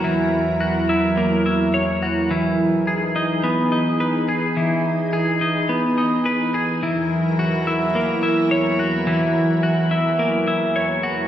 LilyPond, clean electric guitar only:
\new Staff \with { instrumentName = "Clean electric guitar" } { \time 4/4 \key fis \mixolydian \tempo 4 = 106 <e ais e' fis' cis''>4 fis'8 e'8 ais8 e'8 cis''8 fis'8 | e4 gis'8 dis'8 b8 dis'8 b'8 gis'8 | e4 gis'8 dis'8 b8 dis'8 b'8 gis'8 | e4 fis'8 e'8 ais8 e'8 cis''8 fis'8 |
e4 fis'8 e'8 ais8 e'8 cis''8 fis'8 | }